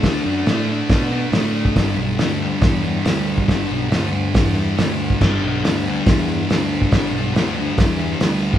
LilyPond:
<<
  \new Staff \with { instrumentName = "Distorted electric guitar" } { \clef bass \time 4/4 \key g \lydian \tempo 4 = 139 <d a d'>8 <a d'>8 <d a d'>8 <a d'>4 <a d'>8 <d a d'>4 | <g, d g>8 <d g>8 <g, d g>8 <d g>4 <d g>8 <g, d g>4 | <g, d g>8 <d g>8 <g, d g>8 <d g>4 <d g>8 <g, d g>4 | <g, d g>8 <d g>8 <g, d g>8 <d g>4 <d g>8 <g, d g>4 |
<g, d g>8 <d g>8 <g, d g>8 <d g>4 <d g>8 <g, d g>4 | }
  \new Staff \with { instrumentName = "Picked electric bass" } { \clef bass \time 4/4 \key g \lydian d,8 fis,8 a,4 b,4 a,4 | g,,8 b,,8 d,4 e,4 d,4 | g,,8 b,,8 d,4 e,4 d,4 | g,,8 b,,8 d,4 e,4 d,4 |
g,,8 b,,8 d,4 e,4 d,4 | }
  \new DrumStaff \with { instrumentName = "Drums" } \drummode { \time 4/4 <hho bd sn>4 <hho sn>4 <hho bd sn>4 <hho sn>8. bd16 | <hho bd sn>4 <hho sn>4 <hho bd sn>4 <hho sn>8. bd16 | <hho bd sn>4 <hho sn>4 <hho bd sn>4 <hho sn>8. bd16 | <cymc bd sn>4 <hho sn>4 <hho bd sn>4 <hho sn>8. bd16 |
<hho bd sn>4 <hho sn>4 <hho bd sn>4 <hho sn>8. bd16 | }
>>